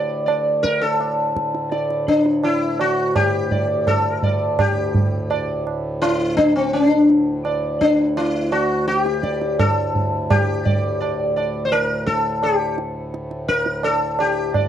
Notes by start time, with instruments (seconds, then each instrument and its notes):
Already playing: harmonium D2 A2, sitar D5
0.26 sitar D5, tabla na
0.63 sitar A#4, tabla ke
0.82 sitar A4
1.00 tabla na
1.36 tabla ke
1.54 tabla te
1.72 sitar D5, tabla te
1.90 tabla te
2.08 sitar D4, tabla ke
2.26 tabla te
2.43 sitar E4, tabla na
2.79 sitar F#4, tabla na
3.16 sitar G4, tabla na, tabla ge
3.51 sitar D5, tabla ge
3.87 sitar A4, tabla na, tabla ge
4.23 sitar D5, tabla ge
4.59 harmonium D2 A2, sitar G4, tabla na, tabla ge
4.95 tabla ge
5.30 sitar D5, tabla na
5.67 tabla na
6.02 sitar E4, tabla na
6.37 sitar D4, tabla ke
6.56 sitar C4
6.73 sitar D4, tabla na
7.10 tabla te
7.45 sitar D5, tabla na
7.81 sitar D4, tabla ke
8.17 sitar E4, tabla na
8.52 sitar F#4, tabla na
8.88 sitar F#4, tabla te
9.00 sitar G4
9.06 tabla te
9.23 sitar D5, tabla ke
9.42 tabla te
9.59 sitar A4, tabla na, tabla ge
9.95 tabla ge
10.30 sitar G4, tabla na, tabla ge
10.65 sitar D5, tabla ge
11.01 sitar D5, tabla na
11.36 sitar D5, tabla na
11.65 sitar C5
11.72 sitar A#4, tabla na
12.06 sitar A4, tabla ke
12.43 sitar G4, tabla na
12.78 tabla te
13.14 tabla te
13.31 tabla te
13.48 sitar A#4, tabla ke
13.66 tabla te
13.83 sitar A4, tabla na
14.19 sitar G4, tabla na
14.54 sitar D5, tabla na, tabla ge